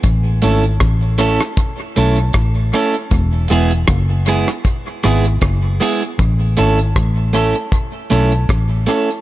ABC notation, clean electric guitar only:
X:1
M:4/4
L:1/16
Q:"Swing 16ths" 1/4=78
K:A
V:1 name="Clean electric guitar"
z2 [A,CEA] z3 [A,CEA] z3 [A,CEA] z3 [A,CEA] z | z2 [G,B,EG] z3 [G,B,EG] z3 [G,B,EG] z3 [G,B,EG] z | z2 [A,CEA] z3 [A,CEA] z3 [A,CEA] z3 [A,CEA] z |]